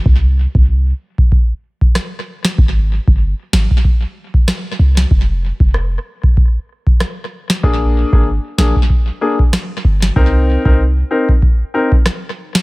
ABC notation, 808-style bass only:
X:1
M:4/4
L:1/16
Q:"Swing 16ths" 1/4=95
K:Bbmix
V:1 name="808-style bass" clef=bass
C,,3 C,,3 z8 z2 | A,,,3 G,,,2 z A,,, z6 z C,,2 | F,,,3 F,,,3 z8 z2 | B,,,3 A,,,2 z B,,, z6 z G,,,2 |
C,,3 C,,3 z8 z2 |]